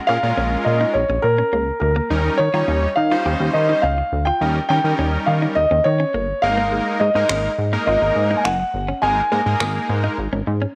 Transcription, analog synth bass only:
0.09 0.18 A#2 loud
0.23 0.32 A#2 medium
0.37 0.56 A#1 loud
0.66 0.85 A#2 loud
0.95 1.04 A#1 loud
1.10 1.19 A#1 medium
1.24 1.43 A#2 loud
1.53 1.71 C#2 medium
1.82 2.00 D2 loud
2.10 2.29 D#2 loud
2.39 2.49 D#3 loud
2.54 2.63 D#3 loud
2.68 2.87 D#2 loud
2.97 3.16 D#3 loud
3.26 3.35 D#2 loud
3.40 3.50 D#2 loud
3.55 3.73 D#3 loud
3.83 4.02 C#2 medium
4.12 4.31 D2 medium
4.41 4.60 D#2 loud
4.70 4.79 D#3 loud
4.84 4.94 D#3 loud
4.99 5.18 D#2 loud
5.27 5.46 D#3 loud
5.57 5.66 D#2 loud
5.71 5.80 D#2 loud
5.86 6.04 D#3 loud
6.14 6.33 G1 medium
6.43 6.81 G#1 medium
7.01 7.10 G#2 loud
7.15 7.24 G#2 loud
7.29 7.48 G#1 loud
7.58 7.77 G#2 loud
7.87 7.97 G#1 loud
8.02 8.11 G#1 medium
8.16 8.35 G#2 loud
8.45 8.64 F#1 medium
8.74 8.93 G1 loud
9.03 9.21 G#1 loud
9.32 9.41 G#2 medium
9.46 9.55 G#2 medium
9.60 9.79 G#1 loud
9.89 10.08 G#2 loud
10.18 10.28 G#1 loud
10.33 10.42 G#1 loud
10.47 10.66 G#2 loud

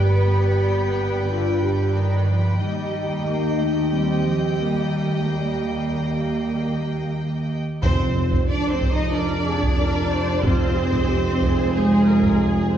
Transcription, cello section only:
0.00 1.26 B3 medium
1.29 1.94 D3 medium
1.94 2.28 D#3 soft
2.27 2.60 F3 medium
2.60 3.24 G3 soft
3.25 3.58 A#3 soft
3.58 3.91 A3 soft
3.91 4.24 G3 soft
4.23 4.56 F3 soft
4.56 5.20 G3 soft
5.22 7.50 A#3 soft
7.82 8.43 C4 medium
8.48 8.69 D4 medium
8.69 8.91 C4 medium
8.91 9.12 D#4 medium
9.11 10.43 D4 medium
10.43 11.71 C4 medium
11.74 12.72 G#3 medium

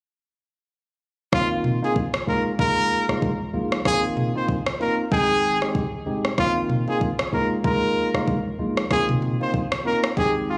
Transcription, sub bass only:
1.33 1.74 G#1 loud
2.27 2.79 C#2 medium
3.09 3.20 C2 medium
3.22 3.48 C#2 medium
3.54 3.80 A#1 medium
3.85 4.26 G#1 loud
5.12 5.64 G#1 loud
6.06 6.32 D#1 medium
6.38 6.79 G#1 loud
7.33 7.85 C#2 loud
8.14 8.25 C2 medium
8.28 8.54 C#2 medium
8.59 8.85 A#1 medium
8.91 9.32 G#1 loud
10.17 10.58 G#1 loud

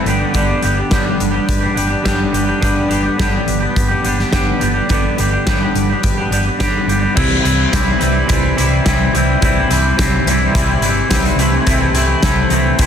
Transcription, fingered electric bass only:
0.05 0.23 G1 medium
0.34 0.52 G1 medium
0.64 0.81 G1 medium
0.92 1.09 G1 medium
1.20 1.37 G1 medium
1.49 1.66 G1 medium
1.76 1.94 G1 medium
2.06 2.23 G1 medium
2.33 2.50 G1 medium
2.62 2.80 G1 loud
2.90 3.07 G1 medium
3.19 3.36 G1 medium
3.48 3.65 G1 medium
3.76 3.93 G1 medium
4.05 4.22 G1 medium
4.33 4.50 G1 medium
4.61 4.78 G1 medium
4.89 5.07 G1 medium
5.19 5.36 G1 medium
5.47 5.64 G1 medium
5.75 5.92 G1 medium
6.04 6.21 G1 medium
6.31 6.48 G1 medium
6.60 6.77 G1 medium
6.87 7.04 G1 medium
7.17 7.37 C2 medium
7.44 7.64 C2 medium
7.73 7.93 C2 medium
8.01 8.21 C2 medium
8.30 8.50 C2 medium
8.58 8.78 C2 medium
8.87 9.06 C2 loud
9.14 9.34 C2 medium
9.42 9.62 C2 medium
9.71 9.91 C2 medium
10.00 10.19 C2 medium
10.26 10.46 C2 medium
10.54 10.74 C2 loud
10.82 11.02 G1 medium
11.11 11.31 C2 medium
11.36 11.57 C2 loud
11.67 11.87 C2 medium
11.92 12.13 C2 medium
12.23 12.43 C2 medium
12.50 12.70 C2 medium
12.79 12.86 C2 medium

